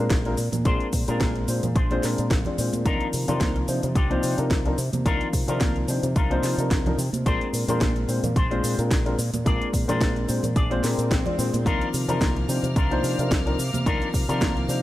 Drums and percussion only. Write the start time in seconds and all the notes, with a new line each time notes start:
0.10 kick, snare, closed hi-hat, shaker
0.25 closed hi-hat
0.37 open hi-hat, shaker
0.52 closed hi-hat, high conga, low conga, shaker
0.65 kick, closed hi-hat, shaker
0.80 closed hi-hat
0.93 kick, open hi-hat, shaker
1.08 closed hi-hat, shaker
1.20 kick, snare, closed hi-hat, high conga, shaker
1.36 closed hi-hat
1.48 open hi-hat, shaker
1.63 closed hi-hat, low conga, shaker
1.76 kick, closed hi-hat, shaker
1.90 closed hi-hat, high conga
2.03 snare, open hi-hat, shaker
2.18 closed hi-hat, shaker
2.31 kick, snare, closed hi-hat, shaker
2.45 closed hi-hat, low conga
2.58 open hi-hat, shaker
2.73 closed hi-hat, high conga, shaker
2.86 kick, closed hi-hat, shaker
3.01 closed hi-hat
3.13 open hi-hat, shaker
3.28 closed hi-hat, low conga, shaker
3.40 kick, snare, closed hi-hat, high conga, shaker
3.56 closed hi-hat
3.68 open hi-hat, shaker
3.83 closed hi-hat, low conga, shaker
3.95 kick, closed hi-hat, shaker
4.11 closed hi-hat, high conga
4.23 open hi-hat, shaker
4.38 closed hi-hat, shaker
4.51 kick, snare, closed hi-hat, shaker
4.66 closed hi-hat
4.78 open hi-hat, shaker
4.93 closed hi-hat, high conga, low conga, shaker
5.06 kick, closed hi-hat, shaker
5.21 closed hi-hat
5.33 kick, open hi-hat, shaker
5.48 closed hi-hat, shaker
5.61 kick, snare, closed hi-hat, high conga, shaker
5.76 closed hi-hat
5.88 open hi-hat, shaker
6.03 closed hi-hat, low conga, shaker
6.16 kick, closed hi-hat, shaker
6.31 closed hi-hat, high conga
6.43 snare, open hi-hat, shaker
6.59 closed hi-hat, shaker
6.71 kick, snare, closed hi-hat, shaker
6.86 closed hi-hat, low conga
6.99 open hi-hat, shaker
7.13 closed hi-hat, high conga, shaker
7.26 kick, closed hi-hat, shaker
7.41 closed hi-hat
7.54 open hi-hat, shaker
7.68 closed hi-hat, low conga, shaker
7.81 kick, snare, closed hi-hat, high conga, shaker
7.96 closed hi-hat
8.09 open hi-hat, shaker
8.24 closed hi-hat, low conga, shaker
8.36 kick, closed hi-hat, shaker
8.51 closed hi-hat, high conga
8.64 open hi-hat, shaker
8.79 closed hi-hat, shaker
8.91 kick, snare, closed hi-hat, shaker
9.06 closed hi-hat
9.19 open hi-hat, shaker
9.34 closed hi-hat, high conga, low conga, shaker
9.46 kick, closed hi-hat, shaker
9.62 closed hi-hat
9.74 kick, open hi-hat, shaker
9.89 closed hi-hat, low conga, shaker
10.01 kick, snare, closed hi-hat, high conga, shaker
10.16 closed hi-hat
10.29 open hi-hat, shaker
10.43 closed hi-hat, low conga, shaker
10.56 kick, closed hi-hat, shaker
10.71 closed hi-hat, high conga
10.84 snare, open hi-hat, shaker
10.99 closed hi-hat, shaker
11.11 kick, snare, closed hi-hat, shaker
11.26 closed hi-hat, low conga
11.39 open hi-hat, shaker
11.53 closed hi-hat, high conga, shaker
11.66 kick, closed hi-hat, cabasa, shaker
11.81 closed hi-hat, cabasa
11.93 open hi-hat, cabasa, shaker
12.08 closed hi-hat, low conga, cabasa, shaker
12.20 kick, snare, closed hi-hat, high conga, cabasa, shaker
12.36 closed hi-hat, cabasa
12.49 open hi-hat, cabasa, shaker
12.63 closed hi-hat, low conga, cabasa, shaker
12.76 kick, closed hi-hat, cabasa, shaker
12.90 closed hi-hat, high conga, cabasa
13.03 open hi-hat, cabasa, shaker
13.19 closed hi-hat, cabasa, shaker
13.31 kick, snare, closed hi-hat, cabasa, shaker
13.46 closed hi-hat, cabasa
13.58 open hi-hat, cabasa, shaker
13.73 closed hi-hat, high conga, low conga, cabasa, shaker
13.86 kick, closed hi-hat, cabasa, shaker
14.01 closed hi-hat, cabasa
14.13 kick, open hi-hat, cabasa, shaker
14.29 closed hi-hat, cabasa, shaker
14.40 kick, snare, closed hi-hat, high conga, cabasa, shaker
14.55 closed hi-hat, cabasa
14.68 open hi-hat, cabasa, shaker